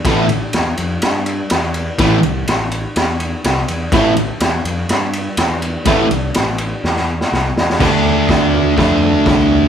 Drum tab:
CC |----------------|----------------|----------------|----------------|
RD |x-x-x-x-x-x-x-x-|x-x-x-x-x-x-x-x-|x-x-x-x-x-x-x-x-|x-x-x-x---------|
SD |o---o---o---o---|o---o---o---o---|o---o---o---o---|o---o---oo-oo-oo|
FT |----------------|----------------|----------------|----------------|
BD |o---------------|o---------------|o---------------|o---------------|

CC |x---------------|
RD |----------------|
SD |o---o---o---o---|
FT |o-o-o-o-o-o-o-o-|
BD |o---o---o---o---|